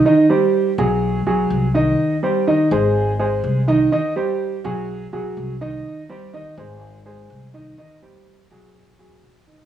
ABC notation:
X:1
M:4/4
L:1/8
Q:1/4=124
K:Cm
V:1 name="Grand piano"
[E,Ee] [G,Gc]2 [^F,^FA]2 [F,F^G]2 [^D,^D^d]- | [^D,^D^d] [G,Gc] [E,Ee] [A,Ac]2 [A,Ac]2 [E,Ee] | [E,Ee] [G,Gc]2 [^F,^FA]2 [F,F^G]2 [^D,^D^d]- | [^D,^D^d] [G,Gc] [E,Ee] [A,Ac]2 [A,Ac]2 [E,Ee] |
[E,Ee] [G,Gc]2 [^F,^FA]2 [F,F^G]2 [^D,^D^d] |]
V:2 name="Upright bass" clef=bass
z3 =B,,,2 B,,, C,,2 | z3 A,,,3 C,,2 | z3 =B,,,2 B,,, C,,2 | z3 A,,,3 C,,2 |
z3 =B,,,3 B,,,2 |]